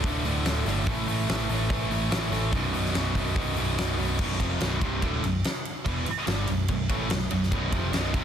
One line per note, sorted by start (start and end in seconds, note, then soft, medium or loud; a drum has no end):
0.04 0.23 D1 loud
0.04 0.24 D2 medium
0.04 0.24 A2 medium
0.04 0.25 D3 loud
0.04 kick loud
0.04 open hi-hat medium
0.24 0.43 D1 medium
0.24 0.44 D2 loud
0.24 0.44 A2 loud
0.24 0.45 D3 loud
0.24 open hi-hat medium
0.44 0.64 D1 medium
0.44 0.64 D2 medium
0.44 0.65 A2 medium
0.44 0.66 D3 medium
0.44 snare loud
0.44 open hi-hat medium
0.66 0.85 G1 loud
0.66 0.85 D2 medium
0.66 0.85 A2 medium
0.66 0.86 D3 loud
0.66 snare soft
0.66 open hi-hat medium
0.86 1.06 A1 medium
0.86 1.06 A2 loud
0.86 1.07 E3 loud
0.86 1.07 A3 medium
0.86 kick loud
0.86 open hi-hat medium
1.07 1.26 A1 medium
1.07 1.27 A2 medium
1.07 1.28 E3 loud
1.07 1.28 A3 loud
1.07 open hi-hat medium
1.28 1.47 A1 loud
1.28 1.49 A2 loud
1.28 1.49 E3 loud
1.28 1.50 A3 loud
1.28 snare loud
1.28 open hi-hat medium
1.48 1.68 A1 loud
1.48 1.68 A2 medium
1.48 1.69 E3 medium
1.48 1.69 A3 loud
1.48 open hi-hat medium
1.70 1.89 A1 loud
1.70 1.89 A2 medium
1.70 1.89 E3 medium
1.70 1.90 A3 medium
1.70 kick loud
1.70 open hi-hat medium
1.90 2.09 A1 medium
1.90 2.09 A2 loud
1.90 2.09 E3 loud
1.90 2.10 A3 loud
1.90 open hi-hat medium
2.10 2.30 A1 medium
2.10 2.29 A2 medium
2.10 2.30 E3 medium
2.10 2.30 A3 loud
2.10 snare loud
2.10 open hi-hat medium
2.30 2.51 A1 medium
2.30 2.51 A2 medium
2.30 2.51 E3 medium
2.30 2.51 A3 loud
2.30 snare soft
2.30 open hi-hat medium
2.52 2.72 B0 loud
2.52 2.71 B1 medium
2.52 2.72 F#2 loud
2.52 2.72 B2 loud
2.52 kick loud
2.52 open hi-hat medium
2.72 2.92 B0 medium
2.72 2.93 B1 medium
2.72 2.93 F#2 medium
2.72 2.94 B2 loud
2.72 open hi-hat medium
2.85 snare soft
2.94 3.13 B0 medium
2.94 3.13 B1 medium
2.94 3.14 F#2 loud
2.94 3.14 B2 loud
2.94 snare loud
2.94 open hi-hat medium
3.14 3.34 B0 loud
3.14 3.33 B1 medium
3.14 3.34 F#2 medium
3.14 3.35 B2 medium
3.14 kick medium
3.14 open hi-hat medium
3.34 3.55 B0 medium
3.34 3.55 B1 medium
3.34 3.56 F#2 medium
3.34 3.56 B2 loud
3.34 kick loud
3.34 open hi-hat medium
3.56 3.76 B0 medium
3.56 3.76 B1 loud
3.56 3.76 F#2 loud
3.56 3.76 B2 loud
3.56 open hi-hat medium
3.77 3.97 B0 medium
3.77 3.97 B1 medium
3.77 3.98 F#2 medium
3.77 3.98 B2 loud
3.77 snare loud
3.77 open hi-hat medium
3.98 4.17 B0 loud
3.98 4.18 B1 medium
3.98 4.18 F#2 medium
3.98 4.18 B2 medium
3.98 open hi-hat medium
4.19 4.38 B0 medium
4.19 4.40 B1 medium
4.19 4.40 F#2 loud
4.19 4.40 B2 loud
4.19 kick loud
4.19 crash loud
4.40 4.59 F1 loud
4.40 4.60 F2 medium
4.40 4.60 C3 loud
4.40 4.61 F3 loud
4.40 kick loud
4.40 ride medium
4.60 4.80 B0 medium
4.60 4.81 B1 medium
4.60 4.81 F#2 loud
4.60 4.81 B2 loud
4.60 snare loud
4.60 ride loud
4.81 5.01 C1 loud
4.81 5.02 C2 medium
4.81 5.02 G2 loud
4.81 5.02 C3 medium
4.81 kick loud
4.81 ride medium
5.02 5.21 D1 medium
5.02 5.23 D2 loud
5.02 5.23 A2 medium
5.02 5.23 D3 loud
5.02 kick loud
5.02 ride loud
5.23 5.43 B0 medium
5.23 5.40 B1 medium
5.23 5.40 F#2 medium
5.23 ride medium
5.44 snare loud
5.44 ride loud
5.65 ride medium
5.86 6.05 E1 medium
5.86 6.06 E2 loud
5.86 6.06 B2 loud
5.86 6.06 E3 loud
5.86 kick loud
5.86 ride loud
6.06 muted picked electric bass stroke soft
6.06 muted distorted electric guitar stroke medium
6.06 ride medium
6.27 6.47 G1 medium
6.27 6.47 G2 loud
6.27 6.48 D3 loud
6.27 6.48 G3 loud
6.27 snare loud
6.27 ride loud
6.47 6.68 B0 medium
6.47 6.64 B1 medium
6.47 6.65 F#2 medium
6.47 ride medium
6.68 6.88 B0 medium
6.68 6.85 B1 medium
6.68 6.86 F#2 medium
6.68 kick medium
6.68 ride loud
6.89 7.09 A1 loud
6.89 7.10 A2 medium
6.89 7.10 E3 medium
6.89 7.10 A3 medium
6.89 kick loud
6.89 ride medium
7.10 7.30 B0 medium
7.10 7.27 B1 medium
7.10 7.27 F#2 medium
7.10 snare loud
7.10 ride loud
7.30 7.50 B0 medium
7.30 7.48 B1 medium
7.30 7.48 F#2 medium
7.30 ride medium
7.43 snare soft
7.51 7.71 B0 medium
7.51 7.72 B1 medium
7.51 7.72 F#2 loud
7.51 7.72 B2 loud
7.51 kick loud
7.51 ride loud
7.72 7.92 F1 loud
7.72 7.93 F2 medium
7.72 7.93 C3 loud
7.72 7.94 F3 loud
7.72 kick loud
7.72 ride medium
7.92 8.12 B0 medium
7.92 8.12 B1 loud
7.92 8.13 F#2 loud
7.92 8.14 B2 loud
7.92 snare loud
7.92 ride loud
8.13 8.24 C1 loud
8.13 8.24 C2 medium
8.13 8.24 G2 loud
8.13 8.24 C3 loud
8.13 kick loud
8.13 ride medium